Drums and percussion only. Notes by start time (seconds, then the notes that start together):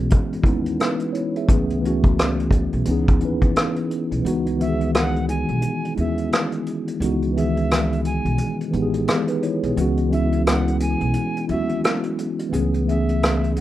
0.10 kick, closed hi-hat
0.33 closed hi-hat
0.43 kick, closed hi-hat
0.66 closed hi-hat
0.80 cross-stick, closed hi-hat
1.00 closed hi-hat
1.15 closed hi-hat
1.36 closed hi-hat
1.49 kick, closed hi-hat
1.70 closed hi-hat
1.85 closed hi-hat
2.04 kick, closed hi-hat
2.19 cross-stick, closed hi-hat
2.40 closed hi-hat
2.51 kick, closed hi-hat
2.73 closed hi-hat
2.85 closed hi-hat
3.08 kick, closed hi-hat
3.20 closed hi-hat
3.42 kick, closed hi-hat
3.56 cross-stick, closed hi-hat
3.76 closed hi-hat
3.91 closed hi-hat
4.12 closed hi-hat
4.26 closed hi-hat
4.46 closed hi-hat
4.61 closed hi-hat
4.81 closed hi-hat
4.94 cross-stick, closed hi-hat
5.16 closed hi-hat
5.29 closed hi-hat
5.49 closed hi-hat
5.62 closed hi-hat
5.85 closed hi-hat
5.97 closed hi-hat
6.18 closed hi-hat
6.32 cross-stick, closed hi-hat
6.52 closed hi-hat
6.66 closed hi-hat
6.88 closed hi-hat
7.02 closed hi-hat
7.22 closed hi-hat
7.37 closed hi-hat
7.57 closed hi-hat
7.71 cross-stick, closed hi-hat
7.92 closed hi-hat
8.05 closed hi-hat
8.25 closed hi-hat
8.38 closed hi-hat
8.61 closed hi-hat
8.73 closed hi-hat
8.94 closed hi-hat
9.08 cross-stick, closed hi-hat
9.27 closed hi-hat
9.43 closed hi-hat
9.63 closed hi-hat
9.77 closed hi-hat
9.97 closed hi-hat
10.12 closed hi-hat
10.32 closed hi-hat
10.47 cross-stick, closed hi-hat
10.68 closed hi-hat
10.80 closed hi-hat
11.00 closed hi-hat
11.13 closed hi-hat
11.37 closed hi-hat
11.49 closed hi-hat
11.69 closed hi-hat
11.84 cross-stick, closed hi-hat
12.03 closed hi-hat
12.19 closed hi-hat
12.39 closed hi-hat
12.53 closed hi-hat
12.74 closed hi-hat
12.89 closed hi-hat
13.09 closed hi-hat
13.23 cross-stick, closed hi-hat
13.44 closed hi-hat
13.56 closed hi-hat